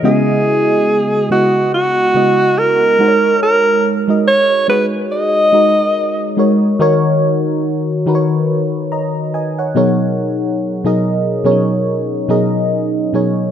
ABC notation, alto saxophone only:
X:1
M:4/4
L:1/8
Q:"Swing 16ths" 1/4=71
K:C#dor
V:1 name="Alto saxophone"
G3 F F2 A2 | A z c B d3 z | z8 | z8 |]